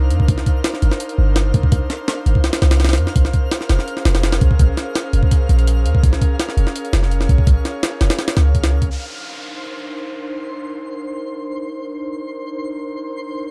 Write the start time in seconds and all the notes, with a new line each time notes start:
Already playing: C2 D4 D#4 A#4 C5 F5 F6
0.10 F2, closed hi-hat
0.20 kick
0.28 C2, kick, closed hi-hat
0.38 snare
0.46 kick, closed hi-hat
0.64 snare, closed hi-hat
0.74 snare
0.82 G1, closed hi-hat
0.91 snare
1.00 closed hi-hat
1.09 closed hi-hat
1.18 G1
1.36 snare, closed hi-hat
1.54 C2, kick, closed hi-hat
1.63 kick
1.72 C2, kick, closed hi-hat
1.90 snare, closed hi-hat
2.08 snare, closed hi-hat
2.26 G1, closed hi-hat
2.35 kick
2.44 snare, closed hi-hat
2.53 snare, closed hi-hat
2.62 C2, snare, closed hi-hat
2.71 snare, closed hi-hat
2.80 snare, closed hi-hat
2.85 snare, closed hi-hat
2.89 snare, closed hi-hat
2.93 snare, closed hi-hat
2.98 F2, closed hi-hat
3.07 snare
3.16 A#1 C#4 G#4 A#4, kick, closed hi-hat
3.25 snare
3.33 kick, closed hi-hat
3.51 snare, closed hi-hat
3.61 snare
3.69 F1, snare, closed hi-hat
3.79 snare
3.88 closed hi-hat
3.97 snare
4.05 F1, snare, closed hi-hat
4.15 snare, closed hi-hat
4.23 snare, closed hi-hat
4.32 snare, closed hi-hat
4.41 A#1, kick, closed hi-hat
4.51 kick
4.59 A#1, kick, closed hi-hat
4.77 snare, closed hi-hat
4.95 snare, closed hi-hat
5.13 F1, closed hi-hat
5.23 kick
5.31 kick, closed hi-hat
5.49 A#1, closed hi-hat
5.59 closed hi-hat
5.67 closed hi-hat
5.85 D#2, closed hi-hat
5.95 kick
6.03 A#1 C#5, kick, closed hi-hat
6.13 snare
6.21 kick, closed hi-hat
6.40 snare, closed hi-hat
6.49 snare
6.57 F1, closed hi-hat
6.67 snare
6.76 closed hi-hat
6.85 closed hi-hat
6.93 F1, snare, closed hi-hat
7.03 snare
7.11 closed hi-hat
7.21 snare
7.29 A#1, kick, closed hi-hat
7.38 kick
7.47 A#1, kick, closed hi-hat
7.65 snare, closed hi-hat
7.83 snare, closed hi-hat
8.01 F1, snare, closed hi-hat
8.10 snare, closed hi-hat
8.19 snare, closed hi-hat
8.28 snare, closed hi-hat
8.37 C#2, snare, closed hi-hat
8.55 kick, closed hi-hat
8.64 snare, closed hi-hat
8.82 kick, closed hi-hat
8.90 D4 D#4 A#4 C5 C6, downlifter